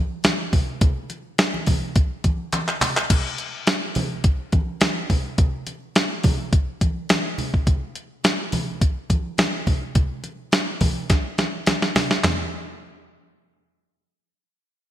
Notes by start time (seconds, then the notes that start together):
0.24 snare, closed hi-hat, muted conga, high conga
0.53 kick, open hi-hat, low conga
0.81 kick, closed hi-hat, low conga
1.10 closed hi-hat, muted conga
1.38 snare, closed hi-hat, muted conga
1.54 high conga
1.67 kick, open hi-hat, muted conga, high conga, low conga
1.96 kick, closed hi-hat, muted conga
2.24 kick, closed hi-hat, muted conga, high conga
2.52 clap, closed hi-hat, muted conga, high conga
2.68 clap
2.81 clap, open hi-hat, muted conga, low conga
2.97 clap
3.10 kick, closed hi-hat, crash, muted conga, low conga
3.38 closed hi-hat
3.67 snare, closed hi-hat
3.95 open hi-hat, high conga, low conga
4.24 kick, closed hi-hat, muted conga
4.52 kick, closed hi-hat, muted conga, high conga
4.81 snare, closed hi-hat, muted conga, high conga
5.10 kick, open hi-hat, muted conga, low conga
5.38 kick, closed hi-hat, low conga
5.67 closed hi-hat, muted conga
5.96 snare, closed hi-hat, muted conga
6.24 kick, open hi-hat, high conga, low conga
6.53 kick, closed hi-hat
6.81 kick, closed hi-hat, muted conga, high conga
7.09 snare, closed hi-hat, high conga
7.38 open hi-hat, muted conga, low conga
7.54 kick
7.67 kick, closed hi-hat, muted conga, low conga
7.95 closed hi-hat
8.24 snare, closed hi-hat, muted conga
8.52 open hi-hat, muted conga, high conga, low conga
8.81 kick, closed hi-hat, muted conga
9.10 kick, closed hi-hat, muted conga, high conga
9.38 snare, closed hi-hat, muted conga, high conga
9.67 kick, open hi-hat, muted conga, low conga
9.95 kick, closed hi-hat, low conga
10.24 closed hi-hat, muted conga
10.52 snare, closed hi-hat, muted conga
10.81 kick, open hi-hat, high conga, low conga
11.10 kick, snare, closed hi-hat, muted conga
11.38 snare, closed hi-hat, high conga
11.67 snare, closed hi-hat, muted conga, high conga
11.82 snare
11.96 snare, open hi-hat, low conga
12.11 snare
12.24 snare, clap, floor tom, high conga